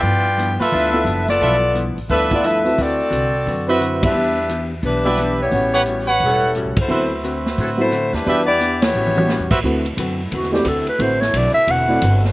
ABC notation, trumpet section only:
X:1
M:4/4
L:1/8
Q:"Swing" 1/4=175
K:Dmix
V:1 name="Trumpet section"
z3 [=FABe]3 z2 | [=FABe] z3 [ABe]3 z | z4 z [FBce]3 | z4 z [GBde]3 |
z [GB^cf] z [Bcf]3 z2 | [FBce]4- [FBce] z3 | [GBde] z6 [FBce] | z8 |
z8 |]